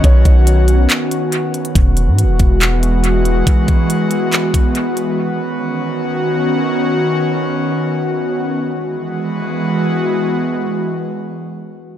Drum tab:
HH |x-x-x-x-x-x-x-xx|x-x-x-x-x-x-x-x-|x-x-x-x-x-x-x-x-|----------------|
CP |--------x-------|--------x-------|--------x-------|----------------|
BD |o-o-------------|o-----o---------|o-o-------o-----|----------------|

HH |----------------|----------------|----------------|
CP |----------------|----------------|----------------|
BD |----------------|----------------|----------------|